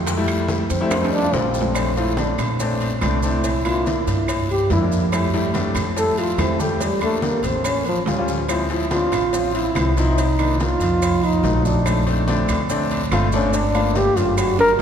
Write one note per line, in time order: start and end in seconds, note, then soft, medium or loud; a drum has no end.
0.00 0.64 F2 loud
0.06 high bongo medium
0.06 high conga soft
0.06 high timbale medium
0.06 long guiro medium
0.06 maracas loud
0.17 0.62 G3 loud
0.17 0.62 A3 medium
0.17 0.62 E4 loud
0.28 high conga soft
0.28 high timbale medium
0.28 claves medium
0.28 maracas soft
0.48 high bongo medium
0.48 high conga loud
0.48 low timbale medium
0.48 short guiro medium
0.48 maracas soft
0.70 1.30 F2 loud
0.70 1.15 C4 loud
0.70 high bongo soft
0.70 high conga soft
0.70 high timbale medium
0.70 short guiro medium
0.70 maracas medium
0.81 0.91 G3 medium
0.81 0.92 A3 medium
0.81 0.92 E4 loud
0.90 high bongo medium
0.90 high conga soft
0.90 high timbale medium
0.90 long guiro medium
0.90 claves medium
0.90 maracas medium
1.01 1.17 G3 medium
1.01 1.17 A3 medium
1.01 1.17 D#4 medium
1.01 high timbale medium
1.12 1.36 D4 loud
1.12 high bongo soft
1.12 high conga soft
1.12 maracas soft
1.19 high timbale medium
1.23 1.67 G3 medium
1.23 1.67 A3 medium
1.23 1.67 F4 medium
1.32 2.33 A#1 loud
1.32 1.98 C4 medium
1.32 high bongo medium
1.32 low bongo medium
1.32 high conga medium
1.32 short guiro medium
1.32 maracas soft
1.54 high bongo soft
1.54 short guiro medium
1.54 maracas medium
1.61 low timbale loud
1.75 1.90 A3 medium
1.75 1.91 C4 medium
1.75 1.91 D4 medium
1.75 cowbell loud
1.75 high conga soft
1.75 low agogo medium
1.75 long guiro medium
1.75 claves medium
1.75 maracas loud
1.96 2.12 A3 medium
1.96 2.12 C4 medium
1.96 2.22 E4 loud
1.96 2.12 F4 medium
1.96 cowbell medium
1.96 high conga soft
1.96 maracas soft
2.17 2.48 A3 medium
2.17 2.48 C4 medium
2.17 2.48 D4 medium
2.17 2.40 D4 medium
2.17 cowbell medium
2.17 high conga loud
2.17 low timbale medium
2.17 low agogo medium
2.17 short guiro medium
2.17 maracas soft
2.38 2.98 A#2 loud
2.38 cowbell medium
2.38 high conga soft
2.38 low conga medium
2.38 low agogo medium
2.38 short guiro medium
2.38 claves medium
2.38 maracas medium
2.60 2.90 A3 medium
2.60 2.90 C4 medium
2.60 2.90 D4 medium
2.60 cowbell loud
2.60 high conga soft
2.60 low conga medium
2.60 long guiro medium
2.60 maracas medium
2.80 cowbell medium
2.80 high conga soft
2.80 low agogo medium
2.80 maracas soft
3.01 4.01 C2 loud
3.01 3.17 A3 medium
3.01 3.17 C4 medium
3.01 3.18 D4 loud
3.01 cowbell medium
3.01 high conga medium
3.01 low timbale medium
3.01 low agogo loud
3.01 short guiro medium
3.01 claves medium
3.01 maracas soft
3.23 3.44 A3 medium
3.23 3.45 C4 medium
3.23 3.45 D4 medium
3.23 3.68 E4 loud
3.23 short guiro medium
3.23 maracas medium
3.44 cowbell loud
3.44 high conga soft
3.44 low agogo medium
3.44 long guiro medium
3.44 maracas medium
3.65 4.24 A#3 medium
3.65 4.24 D4 medium
3.65 4.25 E4 medium
3.65 3.90 F4 loud
3.65 high conga soft
3.65 low agogo loud
3.65 claves medium
3.65 maracas soft
3.86 4.50 E4 medium
3.86 cowbell medium
3.86 high conga loud
3.86 low timbale medium
3.86 short guiro medium
3.86 maracas soft
4.07 4.66 G2 medium
4.07 cowbell medium
4.07 high conga soft
4.07 low agogo medium
4.07 short guiro medium
4.07 maracas medium
4.28 cowbell loud
4.28 high conga soft
4.28 low agogo loud
4.28 long guiro medium
4.28 claves medium
4.28 maracas medium
4.49 4.70 G4 loud
4.49 high conga soft
4.49 low agogo medium
4.49 maracas soft
4.70 5.70 F2 loud
4.70 4.78 A#3 medium
4.70 4.78 D4 medium
4.70 4.78 E4 medium
4.70 4.85 E4 loud
4.70 cowbell medium
4.70 high conga medium
4.70 low timbale loud
4.70 short guiro medium
4.70 maracas soft
4.81 5.03 A#3 medium
4.81 5.03 D4 medium
4.81 5.04 E4 medium
4.92 short guiro medium
4.92 maracas medium
5.12 5.28 G3 medium
5.12 5.28 A3 medium
5.12 5.28 E4 loud
5.12 cowbell loud
5.12 high conga soft
5.12 low agogo loud
5.12 long guiro medium
5.12 claves medium
5.12 maracas medium
5.34 5.49 G3 medium
5.34 5.49 A3 medium
5.34 5.49 E4 loud
5.34 cowbell medium
5.34 high conga soft
5.34 maracas soft
5.54 5.84 G3 medium
5.54 5.85 A3 medium
5.54 5.85 D4 medium
5.54 cowbell medium
5.54 high conga loud
5.54 low timbale medium
5.54 low agogo medium
5.54 short guiro medium
5.54 maracas soft
5.75 6.35 F2 medium
5.75 cowbell medium
5.75 high conga soft
5.75 low conga medium
5.75 low agogo loud
5.75 short guiro medium
5.75 claves medium
5.75 maracas medium
5.96 6.26 G3 medium
5.96 6.26 A3 medium
5.96 6.26 E4 medium
5.96 6.20 A4 loud
5.96 cowbell loud
5.96 high conga soft
5.96 long guiro medium
5.96 maracas medium
6.18 6.42 F4 loud
6.18 cowbell medium
6.18 high conga soft
6.18 low agogo medium
6.18 maracas soft
6.38 7.38 E2 medium
6.38 6.54 G3 medium
6.38 6.54 A3 medium
6.38 6.61 C4 medium
6.38 6.54 E4 medium
6.38 cowbell medium
6.38 high conga medium
6.38 low timbale medium
6.38 low agogo loud
6.38 short guiro medium
6.38 claves medium
6.38 maracas soft
6.59 6.81 G3 medium
6.59 6.81 A3 medium
6.59 6.84 A3 medium
6.59 6.81 G4 loud
6.59 high conga medium
6.59 short guiro medium
6.59 maracas medium
6.80 7.03 G3 medium
6.80 cowbell loud
6.80 high conga soft
6.80 low agogo medium
6.80 long guiro medium
6.80 maracas medium
7.01 7.61 G3 medium
7.01 7.26 A3 loud
7.01 7.61 A#3 medium
7.01 7.61 D4 medium
7.01 high conga soft
7.01 low agogo loud
7.01 claves medium
7.01 maracas soft
7.22 7.48 A#3 medium
7.22 cowbell medium
7.22 high conga loud
7.22 low timbale medium
7.22 short guiro medium
7.22 maracas soft
7.43 8.03 A1 loud
7.43 7.69 C4 loud
7.43 cowbell medium
7.43 high conga soft
7.43 low agogo medium
7.43 short guiro medium
7.43 maracas medium
7.64 7.87 C#4 loud
7.64 cowbell loud
7.64 high conga soft
7.64 low agogo loud
7.64 long guiro medium
7.64 claves medium
7.64 maracas medium
7.85 8.00 F3 medium
7.85 high conga soft
7.85 low agogo medium
7.85 maracas soft
8.06 9.06 D2 medium
8.06 8.14 G3 medium
8.06 8.15 C#4 medium
8.06 8.15 F4 medium
8.06 cowbell medium
8.06 high conga medium
8.06 low timbale loud
8.06 short guiro medium
8.06 maracas soft
8.18 8.40 G3 medium
8.18 8.40 C#4 medium
8.18 8.40 F4 medium
8.28 short guiro medium
8.28 maracas medium
8.49 8.64 F3 medium
8.49 8.65 C4 medium
8.49 8.65 E4 medium
8.49 cowbell loud
8.49 high conga soft
8.49 low agogo medium
8.49 long guiro medium
8.49 claves medium
8.49 maracas medium
8.70 8.85 F3 medium
8.70 8.86 C4 medium
8.70 8.86 E4 medium
8.70 cowbell medium
8.70 high conga soft
8.70 maracas soft
8.91 9.21 F3 medium
8.91 9.21 C4 medium
8.91 9.21 D4 medium
8.91 9.51 F4 loud
8.91 cowbell medium
8.91 high conga loud
8.91 low timbale medium
8.91 low agogo medium
8.91 short guiro medium
8.91 maracas soft
9.12 9.71 A1 medium
9.12 cowbell medium
9.12 high conga soft
9.12 low conga medium
9.12 low agogo loud
9.12 short guiro medium
9.12 claves medium
9.12 maracas medium
9.33 9.63 F3 medium
9.33 9.63 C4 medium
9.33 9.63 F4 medium
9.33 cowbell loud
9.33 high conga soft
9.33 long guiro medium
9.33 maracas medium
9.54 9.94 E4 medium
9.54 cowbell medium
9.54 high conga soft
9.54 low agogo medium
9.54 maracas soft
9.75 10.74 C2 loud
9.75 9.90 F3 medium
9.75 9.91 C4 medium
9.75 9.91 E4 medium
9.75 cowbell medium
9.75 high conga medium
9.75 low timbale medium
9.75 low agogo loud
9.75 short guiro medium
9.75 claves medium
9.75 maracas soft
9.97 10.18 F3 medium
9.97 10.18 C4 medium
9.97 10.64 D#4 medium
9.97 10.18 E4 loud
9.97 short guiro medium
9.97 maracas medium
10.18 cowbell loud
10.18 high conga soft
10.18 low agogo medium
10.18 long guiro medium
10.18 maracas loud
10.39 10.98 D#3 medium
10.39 10.98 A#3 medium
10.39 10.98 D4 medium
10.39 low agogo loud
10.39 claves medium
10.39 maracas soft
10.60 11.26 F4 loud
10.60 cowbell medium
10.60 high conga medium
10.60 low timbale medium
10.60 short guiro medium
10.60 maracas soft
10.80 11.39 F2 loud
10.80 cowbell medium
10.80 high conga soft
10.80 low agogo medium
10.80 short guiro medium
10.80 maracas medium
11.02 cowbell loud
11.02 high conga soft
11.02 low agogo loud
11.02 long guiro medium
11.02 claves medium
11.02 maracas medium
11.23 11.67 D#4 loud
11.23 high conga soft
11.23 low agogo medium
11.23 maracas soft
11.43 12.42 A#1 loud
11.43 11.51 F#3 medium
11.43 11.51 A3 medium
11.43 11.52 D#4 medium
11.43 cowbell medium
11.43 high conga medium
11.43 low timbale loud
11.43 short guiro medium
11.43 maracas soft
11.54 11.76 F#3 medium
11.54 11.77 A3 medium
11.54 11.77 D#4 medium
11.65 12.28 D4 loud
11.65 high conga medium
11.65 short guiro medium
11.65 maracas medium
11.86 12.00 A3 medium
11.86 12.01 C4 medium
11.86 12.01 D4 medium
11.86 cowbell loud
11.86 high conga soft
11.86 low agogo loud
11.86 long guiro medium
11.86 claves medium
11.86 maracas loud
12.06 12.21 A3 medium
12.06 12.22 C4 medium
12.06 12.22 D4 medium
12.06 cowbell medium
12.06 high conga soft
12.06 maracas soft
12.27 12.57 A3 medium
12.27 12.57 C4 medium
12.27 12.57 D4 loud
12.27 cowbell medium
12.27 high conga loud
12.27 low timbale medium
12.27 low agogo medium
12.27 short guiro medium
12.27 maracas soft
12.48 13.08 D2 loud
12.48 cowbell medium
12.48 high conga soft
12.48 low conga medium
12.48 low agogo loud
12.48 short guiro medium
12.48 claves medium
12.48 maracas medium
12.69 13.00 A3 medium
12.69 13.00 C4 medium
12.69 13.00 D4 loud
12.69 cowbell loud
12.69 high conga soft
12.69 low conga medium
12.69 long guiro medium
12.69 maracas medium
12.90 cowbell medium
12.90 high conga soft
12.90 low agogo medium
12.90 maracas soft
13.11 14.11 G1 loud
13.11 13.27 A3 loud
13.11 13.27 C4 medium
13.11 13.27 F4 loud
13.11 cowbell medium
13.11 high conga medium
13.11 low timbale loud
13.11 low agogo loud
13.11 short guiro medium
13.11 claves medium
13.11 maracas soft
13.32 13.54 A3 loud
13.32 13.54 C4 medium
13.32 13.56 C#4 loud
13.32 13.54 D4 loud
13.32 short guiro medium
13.32 maracas medium
13.53 13.98 D4 loud
13.53 cowbell loud
13.53 high conga soft
13.53 low agogo medium
13.53 long guiro medium
13.53 maracas medium
13.74 14.34 A3 medium
13.74 14.34 A#3 medium
13.74 14.34 F4 medium
13.74 high conga soft
13.74 low agogo loud
13.74 claves medium
13.74 maracas soft
13.95 14.19 G4 loud
13.95 cowbell medium
13.95 high conga medium
13.95 low timbale medium
13.95 short guiro medium
13.95 maracas soft
14.16 14.76 F#1 loud
14.16 14.40 F4 loud
14.16 cowbell medium
14.16 high conga soft
14.16 low agogo medium
14.16 short guiro medium
14.16 maracas medium
14.38 14.59 F#4 medium
14.38 cowbell loud
14.38 high conga soft
14.38 low agogo loud
14.38 long guiro medium
14.38 claves medium
14.38 maracas medium
14.59 14.73 A#4 loud
14.59 high conga soft
14.59 high timbale medium
14.59 low agogo medium
14.59 maracas soft